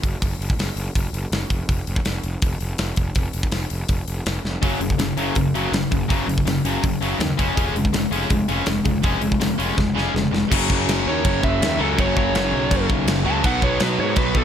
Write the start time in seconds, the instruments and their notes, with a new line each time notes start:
0.03 picked electric bass F#1, kick, open hi-hat
0.22 picked electric bass F#1, kick, open hi-hat
0.39 picked electric bass F#1, open hi-hat
0.50 kick
0.57 picked electric bass F#1, snare, open hi-hat
0.76 picked electric bass F#1, open hi-hat
0.95 picked electric bass F#1, kick, open hi-hat
1.13 picked electric bass F#1, open hi-hat
1.32 picked electric bass F#1, snare, open hi-hat
1.50 picked electric bass F1, kick, open hi-hat
1.69 picked electric bass F1, kick, open hi-hat
1.87 picked electric bass F1, open hi-hat
1.96 kick
2.05 picked electric bass F1, snare, open hi-hat
2.23 picked electric bass F1, open hi-hat
2.42 picked electric bass F1, kick, open hi-hat
2.60 picked electric bass F1, open hi-hat
2.78 picked electric bass F1, snare, open hi-hat
2.96 picked electric bass F1, kick, open hi-hat
3.15 picked electric bass F1, kick, open hi-hat
3.33 picked electric bass F1, open hi-hat
3.43 kick
3.52 picked electric bass F1, snare, open hi-hat
3.70 picked electric bass F1, open hi-hat
3.88 picked electric bass F1, kick, open hi-hat
4.08 picked electric bass F1, open hi-hat
4.26 picked electric bass F1, snare, open hi-hat
4.45 picked electric bass F1, snare
4.62 picked electric bass F#1, distorted electric guitar F#2 C#3 F#3, kick, open hi-hat
4.80 picked electric bass F#1, distorted electric guitar F#2 C#3, open hi-hat
4.90 kick
4.98 picked electric bass F#1, distorted electric guitar F#2 C#3, snare, open hi-hat
5.17 picked electric bass F#1, distorted electric guitar F#2 C#3 F#3, open hi-hat
5.35 picked electric bass F#1, distorted electric guitar F#2 C#3, kick, open hi-hat
5.54 picked electric bass F#1, distorted electric guitar F#2 C#3 F#3, open hi-hat
5.72 picked electric bass F#1, distorted electric guitar F#2 C#3, snare, open hi-hat
5.91 picked electric bass F#1, distorted electric guitar F#2 C#3, kick, open hi-hat
6.08 picked electric bass F#1, distorted electric guitar F#2 C#3 F#3, kick, open hi-hat
6.27 picked electric bass F#1, distorted electric guitar F#2 C#3, open hi-hat
6.38 kick
6.45 picked electric bass F#1, distorted electric guitar F#2 C#3, snare, open hi-hat
6.65 picked electric bass F#1, distorted electric guitar F#2 C#3 F#3, open hi-hat
6.83 picked electric bass F#1, distorted electric guitar F#2 C#3, kick, open hi-hat
7.01 picked electric bass F#1, distorted electric guitar F#2 C#3 F#3, open hi-hat
7.19 picked electric bass D#2, distorted electric guitar F#2 C#3, snare, open hi-hat
7.37 picked electric bass F1, distorted electric guitar C#3 G#3 C#4, kick, open hi-hat
7.56 picked electric bass F1, distorted electric guitar C#3 G#3 C#4, kick, open hi-hat
7.75 picked electric bass F1, distorted electric guitar C#3 G#3, open hi-hat
7.85 kick
7.93 picked electric bass F1, distorted electric guitar C#3 G#3, snare, open hi-hat
8.11 picked electric bass F1, distorted electric guitar C#3 G#3 C#4, open hi-hat
8.30 picked electric bass F1, distorted electric guitar C#3 G#3, kick, open hi-hat
8.48 picked electric bass F1, distorted electric guitar C#3 G#3 C#4, open hi-hat
8.66 picked electric bass F1, distorted electric guitar C#3 G#3, snare, open hi-hat
8.84 picked electric bass F1, distorted electric guitar C#3 G#3, kick, open hi-hat
9.03 picked electric bass F1, distorted electric guitar C#3 G#3 C#4, kick, open hi-hat
9.22 picked electric bass F1, distorted electric guitar C#3 G#3, open hi-hat
9.32 kick
9.40 picked electric bass F1, distorted electric guitar C#3 G#3, snare, open hi-hat
9.58 picked electric bass F1, distorted electric guitar C#3 G#3 C#4, open hi-hat
9.77 picked electric bass F1, distorted electric guitar C#3 G#3, kick, snare
9.95 picked electric bass F1, distorted electric guitar C#3 G#3 C#4, snare
10.14 picked electric bass F1, distorted electric guitar C#3 G#3, snare
10.31 picked electric bass F1, distorted electric guitar C#3 G#3, snare
10.50 picked electric bass F#1, distorted electric guitar F#2 C#3 F#3, kick, crash
10.70 picked electric bass F#1, kick
10.87 picked electric bass F#1, snare, crash
11.06 picked electric bass D#2, lead electric guitar C#5
11.25 picked electric bass F#1, kick, crash
11.43 picked electric bass F#1, lead electric guitar E5, kick
11.61 picked electric bass D#2, snare, crash
11.78 picked electric bass C#2, distorted electric guitar F#2 C#3 F#3, lead electric guitar A4
11.97 picked electric bass F#1, distorted electric guitar F#2 C#3 F#3, lead electric guitar C#5, kick, crash
12.17 lead electric guitar C#5, kick
12.35 picked electric bass F#1, snare, crash
12.52 picked electric bass B1
12.71 picked electric bass F#1, kick, crash
12.90 picked electric bass B1, kick
13.07 picked electric bass F#1, snare, crash
13.25 picked electric bass C#2, distorted electric guitar F#2 C#3 F#3, lead electric guitar A5
13.43 picked electric bass B1, distorted electric guitar B2 F#3 B3, lead electric guitar F#5, kick, crash
13.62 picked electric bass B1, lead electric guitar C#5, kick
13.80 picked electric bass B1, lead electric guitar B4, snare, crash
13.99 picked electric bass G#2, lead electric guitar C#5
14.16 picked electric bass B1, lead electric guitar B4, kick, crash
14.35 picked electric bass B1, lead electric guitar A4, kick